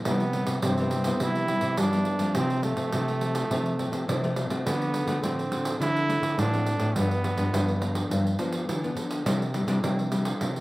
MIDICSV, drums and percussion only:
0, 0, Header, 1, 2, 480
1, 0, Start_track
1, 0, Key_signature, 0, "major"
1, 0, Tempo, 574713
1, 51, Time_signature, 4, 2, 24, 8
1, 8856, End_track
2, 0, Start_track
2, 0, Title_t, "Pandeiro"
2, 44, Note_on_c, 9, 54, 77
2, 127, Note_off_c, 9, 54, 0
2, 167, Note_on_c, 9, 54, 30
2, 250, Note_off_c, 9, 54, 0
2, 278, Note_on_c, 9, 54, 55
2, 361, Note_off_c, 9, 54, 0
2, 389, Note_on_c, 9, 54, 65
2, 472, Note_off_c, 9, 54, 0
2, 521, Note_on_c, 9, 54, 81
2, 605, Note_off_c, 9, 54, 0
2, 647, Note_on_c, 9, 54, 30
2, 731, Note_off_c, 9, 54, 0
2, 758, Note_on_c, 9, 54, 56
2, 842, Note_off_c, 9, 54, 0
2, 870, Note_on_c, 9, 54, 71
2, 954, Note_off_c, 9, 54, 0
2, 1003, Note_on_c, 9, 54, 69
2, 1087, Note_off_c, 9, 54, 0
2, 1131, Note_on_c, 9, 54, 31
2, 1215, Note_off_c, 9, 54, 0
2, 1238, Note_on_c, 9, 54, 59
2, 1322, Note_off_c, 9, 54, 0
2, 1345, Note_on_c, 9, 54, 55
2, 1428, Note_off_c, 9, 54, 0
2, 1482, Note_on_c, 9, 54, 81
2, 1565, Note_off_c, 9, 54, 0
2, 1610, Note_on_c, 9, 54, 33
2, 1694, Note_off_c, 9, 54, 0
2, 1713, Note_on_c, 9, 54, 48
2, 1796, Note_off_c, 9, 54, 0
2, 1830, Note_on_c, 9, 54, 54
2, 1913, Note_off_c, 9, 54, 0
2, 1960, Note_on_c, 9, 54, 84
2, 2043, Note_off_c, 9, 54, 0
2, 2088, Note_on_c, 9, 54, 31
2, 2171, Note_off_c, 9, 54, 0
2, 2197, Note_on_c, 9, 54, 59
2, 2281, Note_off_c, 9, 54, 0
2, 2311, Note_on_c, 9, 54, 55
2, 2395, Note_off_c, 9, 54, 0
2, 2442, Note_on_c, 9, 54, 81
2, 2526, Note_off_c, 9, 54, 0
2, 2574, Note_on_c, 9, 54, 31
2, 2657, Note_off_c, 9, 54, 0
2, 2683, Note_on_c, 9, 54, 52
2, 2767, Note_off_c, 9, 54, 0
2, 2797, Note_on_c, 9, 54, 72
2, 2880, Note_off_c, 9, 54, 0
2, 2931, Note_on_c, 9, 54, 69
2, 3014, Note_off_c, 9, 54, 0
2, 3054, Note_on_c, 9, 54, 31
2, 3138, Note_off_c, 9, 54, 0
2, 3167, Note_on_c, 9, 54, 53
2, 3251, Note_off_c, 9, 54, 0
2, 3281, Note_on_c, 9, 54, 59
2, 3365, Note_off_c, 9, 54, 0
2, 3416, Note_on_c, 9, 54, 83
2, 3500, Note_off_c, 9, 54, 0
2, 3540, Note_on_c, 9, 54, 28
2, 3623, Note_off_c, 9, 54, 0
2, 3644, Note_on_c, 9, 54, 57
2, 3728, Note_off_c, 9, 54, 0
2, 3762, Note_on_c, 9, 54, 61
2, 3845, Note_off_c, 9, 54, 0
2, 3897, Note_on_c, 9, 54, 81
2, 3980, Note_off_c, 9, 54, 0
2, 4023, Note_on_c, 9, 54, 31
2, 4106, Note_off_c, 9, 54, 0
2, 4125, Note_on_c, 9, 54, 58
2, 4208, Note_off_c, 9, 54, 0
2, 4239, Note_on_c, 9, 54, 56
2, 4322, Note_off_c, 9, 54, 0
2, 4372, Note_on_c, 9, 54, 70
2, 4456, Note_off_c, 9, 54, 0
2, 4502, Note_on_c, 9, 54, 34
2, 4586, Note_off_c, 9, 54, 0
2, 4608, Note_on_c, 9, 54, 61
2, 4692, Note_off_c, 9, 54, 0
2, 4721, Note_on_c, 9, 54, 75
2, 4805, Note_off_c, 9, 54, 0
2, 4857, Note_on_c, 9, 54, 73
2, 4940, Note_off_c, 9, 54, 0
2, 4981, Note_on_c, 9, 54, 30
2, 5064, Note_off_c, 9, 54, 0
2, 5092, Note_on_c, 9, 54, 52
2, 5175, Note_off_c, 9, 54, 0
2, 5204, Note_on_c, 9, 54, 60
2, 5288, Note_off_c, 9, 54, 0
2, 5334, Note_on_c, 9, 54, 85
2, 5418, Note_off_c, 9, 54, 0
2, 5458, Note_on_c, 9, 54, 29
2, 5541, Note_off_c, 9, 54, 0
2, 5566, Note_on_c, 9, 54, 53
2, 5650, Note_off_c, 9, 54, 0
2, 5675, Note_on_c, 9, 54, 58
2, 5759, Note_off_c, 9, 54, 0
2, 5811, Note_on_c, 9, 54, 85
2, 5895, Note_off_c, 9, 54, 0
2, 5940, Note_on_c, 9, 54, 31
2, 6023, Note_off_c, 9, 54, 0
2, 6049, Note_on_c, 9, 54, 59
2, 6132, Note_off_c, 9, 54, 0
2, 6160, Note_on_c, 9, 54, 60
2, 6243, Note_off_c, 9, 54, 0
2, 6296, Note_on_c, 9, 54, 78
2, 6380, Note_off_c, 9, 54, 0
2, 6418, Note_on_c, 9, 54, 30
2, 6501, Note_off_c, 9, 54, 0
2, 6529, Note_on_c, 9, 54, 58
2, 6613, Note_off_c, 9, 54, 0
2, 6642, Note_on_c, 9, 54, 70
2, 6725, Note_off_c, 9, 54, 0
2, 6776, Note_on_c, 9, 54, 74
2, 6860, Note_off_c, 9, 54, 0
2, 6904, Note_on_c, 9, 54, 32
2, 6988, Note_off_c, 9, 54, 0
2, 7005, Note_on_c, 9, 54, 56
2, 7089, Note_off_c, 9, 54, 0
2, 7120, Note_on_c, 9, 54, 60
2, 7204, Note_off_c, 9, 54, 0
2, 7258, Note_on_c, 9, 54, 71
2, 7341, Note_off_c, 9, 54, 0
2, 7385, Note_on_c, 9, 54, 28
2, 7468, Note_off_c, 9, 54, 0
2, 7488, Note_on_c, 9, 54, 53
2, 7572, Note_off_c, 9, 54, 0
2, 7605, Note_on_c, 9, 54, 59
2, 7689, Note_off_c, 9, 54, 0
2, 7735, Note_on_c, 9, 54, 82
2, 7819, Note_off_c, 9, 54, 0
2, 7868, Note_on_c, 9, 54, 30
2, 7951, Note_off_c, 9, 54, 0
2, 7969, Note_on_c, 9, 54, 59
2, 8052, Note_off_c, 9, 54, 0
2, 8083, Note_on_c, 9, 54, 66
2, 8167, Note_off_c, 9, 54, 0
2, 8217, Note_on_c, 9, 54, 77
2, 8300, Note_off_c, 9, 54, 0
2, 8343, Note_on_c, 9, 54, 30
2, 8426, Note_off_c, 9, 54, 0
2, 8449, Note_on_c, 9, 54, 58
2, 8533, Note_off_c, 9, 54, 0
2, 8563, Note_on_c, 9, 54, 72
2, 8647, Note_off_c, 9, 54, 0
2, 8694, Note_on_c, 9, 54, 71
2, 8777, Note_off_c, 9, 54, 0
2, 8821, Note_on_c, 9, 54, 35
2, 8856, Note_off_c, 9, 54, 0
2, 8856, End_track
0, 0, End_of_file